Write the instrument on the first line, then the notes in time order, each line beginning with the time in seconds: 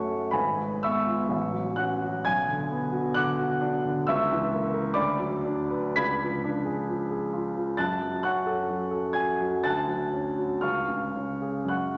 grand piano
Already playing: F#2 A3 C#4 F#4 A4 C#5 F#5 A5 C#6 F#6
0.07 A3
0.31 G#1 B4 G#5 B5
0.56 G#3
0.83 B3 E5 C#6 E6
1.07 F4
1.29 A1
1.52 F#3
1.76 C#4 F#5 F#6
2.01 F#4
2.25 B1 G#5 G#6
2.49 D3
2.70 B3
2.92 F#4
3.14 D3 F#5 D6 F#6
3.39 F#4
3.61 D4
3.85 D3
4.07 C#2 E5 C#6 E6
4.31 E3
4.53 A#3
4.74 A#4
4.94 D2 D5 B5 D6
5.19 F#3
5.45 D4
5.70 B4
5.96 C#2 B5 G#6 B6
6.22 F3
6.44 D4
6.65 G#4
6.89 F3
7.11 G#4
7.33 F4
7.55 F3
7.77 F#2 A5 F#6 A6
8.02 F#3
8.23 C#4 F#5 C#6 F#6
8.46 A4
8.69 F#3
8.91 A4
9.13 F#4 G#5 G#6
9.40 F#3
9.64 D2 A5 F#6 A6
9.87 F#3
10.13 C#4
10.38 F#4
10.61 C#2 F5 C#6 F6
10.88 C#3
11.15 C#4
11.42 G#4
11.64 F#2 F#6
11.69 F#5 C#6